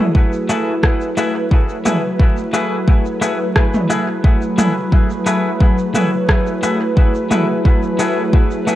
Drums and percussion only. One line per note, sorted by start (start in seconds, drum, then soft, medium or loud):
0.15 kick medium
0.49 shaker medium
0.83 kick medium
0.83 cross-stick medium
1.17 shaker soft
1.51 kick loud
1.86 mid tom medium
1.86 shaker medium
2.19 kick loud
2.54 shaker medium
2.88 kick loud
3.22 shaker medium
3.56 kick loud
3.56 cross-stick medium
3.74 mid tom medium
3.90 shaker medium
4.24 kick loud
4.58 mid tom medium
4.58 shaker medium
4.92 kick loud
5.26 shaker medium
5.60 kick loud
5.95 mid tom medium
5.95 shaker medium
6.29 kick loud
6.29 cross-stick loud
6.63 shaker medium
6.97 kick loud
7.31 mid tom medium
7.31 shaker medium
7.65 kick loud
7.99 shaker medium
8.33 kick loud
8.68 shaker medium